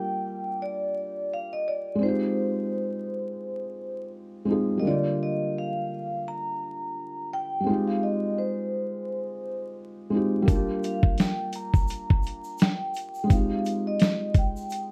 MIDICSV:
0, 0, Header, 1, 4, 480
1, 0, Start_track
1, 0, Tempo, 705882
1, 1365, Time_signature, 4, 2, 24, 8
1, 10144, End_track
2, 0, Start_track
2, 0, Title_t, "Vibraphone"
2, 0, Program_c, 0, 11
2, 0, Note_on_c, 0, 79, 97
2, 424, Note_on_c, 0, 74, 95
2, 429, Note_off_c, 0, 79, 0
2, 908, Note_on_c, 0, 77, 96
2, 909, Note_off_c, 0, 74, 0
2, 1023, Note_off_c, 0, 77, 0
2, 1040, Note_on_c, 0, 75, 88
2, 1128, Note_off_c, 0, 75, 0
2, 1142, Note_on_c, 0, 74, 90
2, 1380, Note_on_c, 0, 72, 84
2, 1381, Note_off_c, 0, 74, 0
2, 2786, Note_off_c, 0, 72, 0
2, 3261, Note_on_c, 0, 75, 76
2, 3294, Note_off_c, 0, 75, 0
2, 3313, Note_on_c, 0, 74, 97
2, 3523, Note_off_c, 0, 74, 0
2, 3555, Note_on_c, 0, 75, 90
2, 3764, Note_off_c, 0, 75, 0
2, 3796, Note_on_c, 0, 77, 97
2, 4271, Note_on_c, 0, 82, 110
2, 4275, Note_off_c, 0, 77, 0
2, 4951, Note_off_c, 0, 82, 0
2, 4987, Note_on_c, 0, 79, 102
2, 5326, Note_off_c, 0, 79, 0
2, 5356, Note_on_c, 0, 77, 92
2, 5399, Note_off_c, 0, 77, 0
2, 5462, Note_on_c, 0, 75, 86
2, 5701, Note_off_c, 0, 75, 0
2, 5701, Note_on_c, 0, 72, 73
2, 6626, Note_off_c, 0, 72, 0
2, 7378, Note_on_c, 0, 77, 89
2, 7619, Note_off_c, 0, 77, 0
2, 7619, Note_on_c, 0, 79, 92
2, 7859, Note_off_c, 0, 79, 0
2, 7859, Note_on_c, 0, 82, 110
2, 8545, Note_off_c, 0, 82, 0
2, 8582, Note_on_c, 0, 79, 94
2, 9056, Note_on_c, 0, 77, 97
2, 9068, Note_off_c, 0, 79, 0
2, 9400, Note_off_c, 0, 77, 0
2, 9433, Note_on_c, 0, 75, 90
2, 9748, Note_off_c, 0, 75, 0
2, 9781, Note_on_c, 0, 79, 83
2, 10144, Note_off_c, 0, 79, 0
2, 10144, End_track
3, 0, Start_track
3, 0, Title_t, "Felt piano"
3, 0, Program_c, 1, 0
3, 0, Control_c, 1, 64, 127
3, 0, Note_on_c, 1, 55, 82
3, 0, Note_on_c, 1, 58, 70
3, 0, Note_on_c, 1, 62, 68
3, 0, Note_on_c, 1, 65, 69
3, 0, Note_on_c, 1, 67, 87
3, 1319, Note_off_c, 1, 55, 0
3, 1328, Note_on_c, 1, 56, 64
3, 1332, Note_off_c, 1, 58, 0
3, 1343, Note_off_c, 1, 62, 0
3, 1351, Note_on_c, 1, 60, 62
3, 1352, Note_off_c, 1, 65, 0
3, 1364, Note_off_c, 1, 67, 0
3, 1372, Note_on_c, 1, 63, 60
3, 1374, Control_c, 1, 64, 0
3, 1395, Note_on_c, 1, 65, 59
3, 1417, Note_on_c, 1, 67, 73
3, 1475, Control_c, 1, 64, 127
3, 2999, Note_off_c, 1, 56, 0
3, 3011, Note_off_c, 1, 60, 0
3, 3021, Note_off_c, 1, 63, 0
3, 3028, Note_on_c, 1, 56, 55
3, 3033, Note_off_c, 1, 65, 0
3, 3038, Note_on_c, 1, 60, 57
3, 3044, Note_off_c, 1, 67, 0
3, 3051, Note_on_c, 1, 63, 53
3, 3063, Note_on_c, 1, 65, 54
3, 3073, Note_on_c, 1, 68, 66
3, 3247, Note_on_c, 1, 55, 62
3, 3271, Note_on_c, 1, 58, 60
3, 3277, Note_off_c, 1, 56, 0
3, 3282, Note_off_c, 1, 60, 0
3, 3288, Note_off_c, 1, 63, 0
3, 3293, Control_c, 1, 64, 0
3, 3294, Note_off_c, 1, 65, 0
3, 3294, Note_on_c, 1, 50, 62
3, 3299, Note_off_c, 1, 68, 0
3, 3315, Note_on_c, 1, 65, 64
3, 3336, Note_on_c, 1, 67, 72
3, 3408, Control_c, 1, 64, 127
3, 5159, Note_off_c, 1, 55, 0
3, 5171, Note_off_c, 1, 58, 0
3, 5171, Note_on_c, 1, 55, 52
3, 5182, Note_off_c, 1, 50, 0
3, 5192, Note_on_c, 1, 60, 58
3, 5193, Note_off_c, 1, 65, 0
3, 5204, Note_off_c, 1, 67, 0
3, 5212, Note_on_c, 1, 56, 68
3, 5213, Control_c, 1, 64, 0
3, 5215, Note_on_c, 1, 63, 59
3, 5236, Note_on_c, 1, 65, 61
3, 5238, Note_off_c, 1, 55, 0
3, 5258, Note_on_c, 1, 67, 70
3, 5350, Control_c, 1, 64, 127
3, 6852, Note_off_c, 1, 60, 0
3, 6859, Note_off_c, 1, 56, 0
3, 6863, Note_off_c, 1, 63, 0
3, 6869, Note_on_c, 1, 56, 58
3, 6874, Note_off_c, 1, 65, 0
3, 6881, Note_on_c, 1, 60, 52
3, 6885, Note_off_c, 1, 67, 0
3, 6892, Note_on_c, 1, 63, 53
3, 6902, Note_on_c, 1, 65, 50
3, 6913, Note_on_c, 1, 67, 64
3, 7086, Note_on_c, 1, 55, 80
3, 7110, Note_on_c, 1, 58, 71
3, 7117, Note_off_c, 1, 56, 0
3, 7123, Note_off_c, 1, 60, 0
3, 7129, Note_off_c, 1, 63, 0
3, 7130, Note_on_c, 1, 62, 74
3, 7134, Note_off_c, 1, 65, 0
3, 7135, Control_c, 1, 64, 0
3, 7139, Note_off_c, 1, 67, 0
3, 7153, Note_on_c, 1, 65, 70
3, 7175, Note_on_c, 1, 67, 85
3, 7252, Control_c, 1, 64, 127
3, 8999, Note_off_c, 1, 55, 0
3, 9002, Note_on_c, 1, 56, 67
3, 9011, Note_off_c, 1, 58, 0
3, 9021, Note_off_c, 1, 62, 0
3, 9023, Note_on_c, 1, 60, 60
3, 9032, Note_off_c, 1, 65, 0
3, 9043, Note_off_c, 1, 67, 0
3, 9047, Note_on_c, 1, 63, 59
3, 9055, Control_c, 1, 64, 0
3, 9069, Note_on_c, 1, 65, 57
3, 9093, Note_on_c, 1, 67, 70
3, 9159, Control_c, 1, 64, 127
3, 10144, Note_off_c, 1, 56, 0
3, 10144, Note_off_c, 1, 60, 0
3, 10144, Note_off_c, 1, 63, 0
3, 10144, Note_off_c, 1, 65, 0
3, 10144, Note_off_c, 1, 67, 0
3, 10144, End_track
4, 0, Start_track
4, 0, Title_t, "Drums"
4, 7125, Note_on_c, 9, 36, 107
4, 7128, Note_on_c, 9, 42, 84
4, 7128, Note_on_c, 9, 82, 73
4, 7193, Note_off_c, 9, 36, 0
4, 7196, Note_off_c, 9, 42, 0
4, 7196, Note_off_c, 9, 82, 0
4, 7366, Note_on_c, 9, 82, 50
4, 7372, Note_on_c, 9, 42, 67
4, 7434, Note_off_c, 9, 82, 0
4, 7440, Note_off_c, 9, 42, 0
4, 7500, Note_on_c, 9, 36, 94
4, 7568, Note_off_c, 9, 36, 0
4, 7600, Note_on_c, 9, 42, 81
4, 7615, Note_on_c, 9, 38, 117
4, 7619, Note_on_c, 9, 82, 75
4, 7668, Note_off_c, 9, 42, 0
4, 7683, Note_off_c, 9, 38, 0
4, 7687, Note_off_c, 9, 82, 0
4, 7839, Note_on_c, 9, 42, 76
4, 7839, Note_on_c, 9, 82, 44
4, 7907, Note_off_c, 9, 42, 0
4, 7907, Note_off_c, 9, 82, 0
4, 7981, Note_on_c, 9, 36, 91
4, 7987, Note_on_c, 9, 82, 52
4, 8049, Note_off_c, 9, 36, 0
4, 8055, Note_off_c, 9, 82, 0
4, 8079, Note_on_c, 9, 82, 70
4, 8094, Note_on_c, 9, 42, 97
4, 8147, Note_off_c, 9, 82, 0
4, 8162, Note_off_c, 9, 42, 0
4, 8230, Note_on_c, 9, 36, 96
4, 8298, Note_off_c, 9, 36, 0
4, 8314, Note_on_c, 9, 82, 47
4, 8341, Note_on_c, 9, 42, 68
4, 8382, Note_off_c, 9, 82, 0
4, 8409, Note_off_c, 9, 42, 0
4, 8458, Note_on_c, 9, 82, 52
4, 8526, Note_off_c, 9, 82, 0
4, 8554, Note_on_c, 9, 82, 69
4, 8566, Note_on_c, 9, 42, 76
4, 8580, Note_on_c, 9, 38, 123
4, 8622, Note_off_c, 9, 82, 0
4, 8634, Note_off_c, 9, 42, 0
4, 8648, Note_off_c, 9, 38, 0
4, 8800, Note_on_c, 9, 82, 58
4, 8816, Note_on_c, 9, 42, 70
4, 8868, Note_off_c, 9, 82, 0
4, 8884, Note_off_c, 9, 42, 0
4, 8938, Note_on_c, 9, 82, 53
4, 9006, Note_off_c, 9, 82, 0
4, 9045, Note_on_c, 9, 36, 106
4, 9046, Note_on_c, 9, 82, 72
4, 9048, Note_on_c, 9, 42, 80
4, 9113, Note_off_c, 9, 36, 0
4, 9114, Note_off_c, 9, 82, 0
4, 9116, Note_off_c, 9, 42, 0
4, 9284, Note_on_c, 9, 82, 53
4, 9291, Note_on_c, 9, 42, 68
4, 9352, Note_off_c, 9, 82, 0
4, 9359, Note_off_c, 9, 42, 0
4, 9517, Note_on_c, 9, 42, 83
4, 9531, Note_on_c, 9, 38, 110
4, 9535, Note_on_c, 9, 82, 76
4, 9585, Note_off_c, 9, 42, 0
4, 9599, Note_off_c, 9, 38, 0
4, 9603, Note_off_c, 9, 82, 0
4, 9753, Note_on_c, 9, 42, 73
4, 9754, Note_on_c, 9, 36, 92
4, 9756, Note_on_c, 9, 82, 44
4, 9821, Note_off_c, 9, 42, 0
4, 9822, Note_off_c, 9, 36, 0
4, 9824, Note_off_c, 9, 82, 0
4, 9904, Note_on_c, 9, 82, 53
4, 9972, Note_off_c, 9, 82, 0
4, 9995, Note_on_c, 9, 82, 73
4, 10010, Note_on_c, 9, 42, 94
4, 10063, Note_off_c, 9, 82, 0
4, 10078, Note_off_c, 9, 42, 0
4, 10144, End_track
0, 0, End_of_file